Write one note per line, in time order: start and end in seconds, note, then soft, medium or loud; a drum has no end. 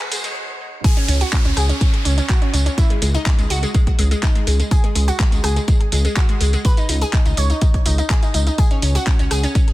0.00 0.80 C#2 medium
0.00 0.80 B2 medium
0.00 0.80 D#3 medium
0.00 0.80 G#3 medium
0.00 0.80 D#4 medium
0.00 0.82 F#4 medium
0.00 kick medium
0.00 riser medium
0.12 0.19 G#3 medium
0.12 open hi-hat loud
0.12 tambourine medium
0.24 0.31 G#3 medium
0.24 closed hi-hat soft
0.24 tambourine soft
0.84 0.92 G#4 loud
0.84 kick loud
0.84 closed hi-hat medium
0.84 tambourine soft
0.84 downlifter medium
0.97 1.04 C#4 medium
0.97 closed hi-hat soft
1.08 1.23 C#2 medium
1.08 1.16 C#4 medium
1.08 open hi-hat loud
1.08 tambourine medium
1.21 1.28 F#4 medium
1.21 closed hi-hat soft
1.21 tambourine soft
1.33 1.40 C#4 medium
1.33 kick loud
1.33 clap loud
1.33 closed hi-hat medium
1.33 tambourine soft
1.45 1.52 C#2 medium
1.45 1.52 C#4 medium
1.45 closed hi-hat soft
1.45 tambourine soft
1.57 1.72 C#2 medium
1.57 1.64 G#4 medium
1.57 cross-stick medium
1.57 open hi-hat medium
1.57 tambourine medium
1.69 1.76 C#4 medium
1.69 closed hi-hat soft
1.69 tambourine soft
1.81 1.88 C#4 medium
1.81 kick loud
1.81 closed hi-hat medium
1.81 tambourine soft
1.94 closed hi-hat soft
2.05 2.20 C#2 loud
2.05 2.12 C#4 medium
2.05 open hi-hat loud
2.05 tambourine medium
2.18 2.24 C#4 medium
2.18 closed hi-hat soft
2.18 tambourine soft
2.29 2.37 F#4 medium
2.29 kick loud
2.29 clap loud
2.29 closed hi-hat medium
2.29 tambourine soft
2.42 2.49 C#4 medium
2.42 closed hi-hat soft
2.53 2.68 C#2 medium
2.53 2.61 C#4 medium
2.53 open hi-hat medium
2.53 tambourine medium
2.66 2.73 C#4 medium
2.66 closed hi-hat soft
2.66 tambourine soft
2.78 2.85 E4 loud
2.78 kick loud
2.78 closed hi-hat medium
2.78 tambourine soft
2.90 2.97 G#3 medium
2.90 closed hi-hat soft
3.02 3.17 C#2 loud
3.02 3.09 G#3 medium
3.02 open hi-hat loud
3.02 tambourine medium
3.14 3.21 D#4 medium
3.14 closed hi-hat soft
3.14 tambourine soft
3.26 3.33 G#3 medium
3.26 kick loud
3.26 clap loud
3.26 closed hi-hat medium
3.26 tambourine soft
3.39 3.46 C#2 medium
3.39 3.45 G#3 medium
3.39 closed hi-hat soft
3.39 tambourine soft
3.50 3.65 C#2 medium
3.50 3.58 F#4 loud
3.50 open hi-hat medium
3.50 tambourine medium
3.63 3.70 G#3 medium
3.63 closed hi-hat soft
3.63 tambourine soft
3.74 3.82 G#3 medium
3.74 kick loud
3.74 closed hi-hat medium
3.74 tambourine soft
3.87 kick medium
3.87 closed hi-hat soft
3.99 4.14 C#2 loud
3.99 4.06 G#3 medium
3.99 open hi-hat loud
3.99 tambourine medium
4.11 4.18 G#3 medium
4.11 closed hi-hat soft
4.11 tambourine soft
4.23 4.30 D#4 medium
4.23 kick loud
4.23 clap loud
4.23 closed hi-hat medium
4.23 tambourine soft
4.35 4.42 G#3 medium
4.35 closed hi-hat soft
4.47 4.62 C#2 medium
4.47 4.54 G#3 medium
4.47 open hi-hat medium
4.47 tambourine medium
4.60 4.66 G#3 medium
4.60 closed hi-hat soft
4.60 tambourine soft
4.71 4.79 G#4 loud
4.71 kick loud
4.71 closed hi-hat medium
4.71 tambourine soft
4.84 4.91 G#3 medium
4.84 closed hi-hat soft
4.95 5.10 C#2 loud
4.95 5.03 G#3 medium
4.95 open hi-hat loud
4.95 tambourine medium
5.08 5.15 F#4 loud
5.08 closed hi-hat soft
5.08 tambourine soft
5.20 5.27 G#3 medium
5.20 kick loud
5.20 clap loud
5.20 closed hi-hat medium
5.32 5.39 C#2 medium
5.32 5.39 G#3 medium
5.32 closed hi-hat soft
5.32 tambourine soft
5.44 5.59 C#2 medium
5.44 5.51 G#4 medium
5.44 cross-stick medium
5.44 open hi-hat medium
5.44 tambourine medium
5.56 5.63 G#3 medium
5.56 closed hi-hat soft
5.56 tambourine soft
5.68 5.75 G#3 medium
5.68 kick loud
5.68 closed hi-hat medium
5.68 tambourine soft
5.81 closed hi-hat soft
5.92 6.07 C#2 loud
5.92 6.00 G#3 medium
5.92 open hi-hat loud
5.92 tambourine medium
6.05 6.12 G#3 medium
6.05 closed hi-hat soft
6.05 tambourine soft
6.16 6.24 F#4 medium
6.16 kick loud
6.16 clap loud
6.16 closed hi-hat medium
6.16 tambourine soft
6.29 6.36 G#3 medium
6.29 closed hi-hat soft
6.41 6.56 C#2 medium
6.41 6.48 G#3 medium
6.41 open hi-hat loud
6.41 tambourine medium
6.53 6.60 G#3 medium
6.53 closed hi-hat soft
6.53 tambourine soft
6.65 6.72 B4 loud
6.65 kick loud
6.65 closed hi-hat medium
6.65 tambourine soft
6.77 6.84 D#4 medium
6.77 closed hi-hat soft
6.77 tambourine soft
6.89 7.04 C#2 loud
6.89 6.96 D#4 medium
6.89 open hi-hat loud
6.89 tambourine medium
7.01 7.08 G#4 medium
7.01 closed hi-hat soft
7.01 tambourine soft
7.13 7.21 D#4 medium
7.13 kick loud
7.13 clap loud
7.13 closed hi-hat medium
7.13 tambourine soft
7.26 7.33 C#2 medium
7.26 7.33 D#4 medium
7.26 closed hi-hat soft
7.26 tambourine soft
7.37 7.52 C#2 medium
7.37 7.45 C#5 medium
7.37 open hi-hat medium
7.37 tambourine medium
7.50 7.57 D#4 medium
7.50 closed hi-hat soft
7.50 tambourine soft
7.61 7.69 D#4 medium
7.61 kick loud
7.61 closed hi-hat medium
7.61 tambourine soft
7.74 kick medium
7.74 closed hi-hat soft
7.86 8.01 C#2 loud
7.86 7.93 D#4 medium
7.86 open hi-hat loud
7.86 tambourine medium
7.98 8.05 D#4 medium
7.98 closed hi-hat soft
7.98 tambourine soft
8.10 8.17 G#4 medium
8.10 kick loud
8.10 clap loud
8.10 closed hi-hat medium
8.10 tambourine soft
8.23 8.29 D#4 medium
8.23 closed hi-hat soft
8.23 tambourine soft
8.34 8.49 C#2 medium
8.34 8.42 D#4 medium
8.34 open hi-hat medium
8.34 tambourine medium
8.47 8.54 D#4 medium
8.47 closed hi-hat soft
8.47 tambourine soft
8.58 8.66 G#4 loud
8.58 kick loud
8.58 closed hi-hat medium
8.58 tambourine soft
8.71 8.78 C#4 medium
8.71 closed hi-hat soft
8.82 8.97 C#2 loud
8.82 8.90 C#4 medium
8.82 open hi-hat loud
8.82 tambourine medium
8.95 9.02 F#4 medium
8.95 closed hi-hat soft
8.95 tambourine soft
9.07 9.14 C#4 medium
9.07 kick loud
9.07 clap loud
9.07 closed hi-hat medium
9.07 tambourine soft
9.19 9.26 C#2 medium
9.19 9.26 C#4 medium
9.19 closed hi-hat soft
9.19 tambourine soft
9.31 9.46 C#2 medium
9.31 9.38 G#4 loud
9.31 cross-stick medium
9.31 open hi-hat medium
9.31 tambourine medium
9.43 9.50 C#4 medium
9.43 closed hi-hat soft
9.43 tambourine soft
9.55 9.62 C#4 medium
9.55 kick loud
9.55 closed hi-hat medium
9.55 tambourine soft
9.68 closed hi-hat soft